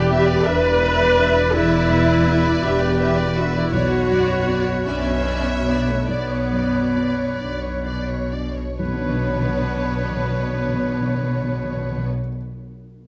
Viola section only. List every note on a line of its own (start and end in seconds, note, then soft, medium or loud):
0.00 0.46 G4 loud
0.46 1.54 B4 loud
1.54 2.62 E4 loud
2.62 3.35 G4 medium
3.34 3.53 F#4 medium
3.54 3.72 E4 medium
3.72 4.86 F#4 loud
4.86 5.65 C#4 medium
5.67 5.88 B3 medium
5.88 6.09 A3 medium
6.09 7.39 B3 medium
8.80 12.07 B3 medium